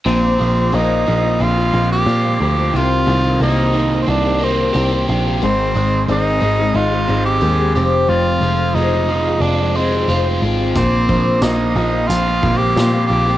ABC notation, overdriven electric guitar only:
X:1
M:4/4
L:1/8
Q:1/4=90
K:Bbmix
V:1 name="Overdriven electric guitar"
B,, F, B, F, C B, F C | C, E, B, E, C B, G C | A,, A, C A, E C A F,, | F,, F, A, F, C A, F C |
B,, F, B, F, C B, F C |]